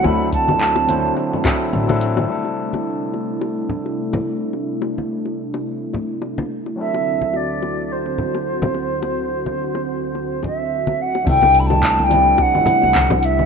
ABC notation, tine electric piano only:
X:1
M:4/4
L:1/16
Q:"Swing 16ths" 1/4=107
K:Clyd
V:1 name="Tine electric piano"
[F,CDEA]6 [F,CDEc]4 [F,CDEA]3 [F,CDEA]3 | [G,CDEA]16- | [G,CDEA]16 | [F,CDEA]16- |
[F,CDEA]16 | [G,CDEA]6 [G,CDEd]8- [G,CDEd]2 |]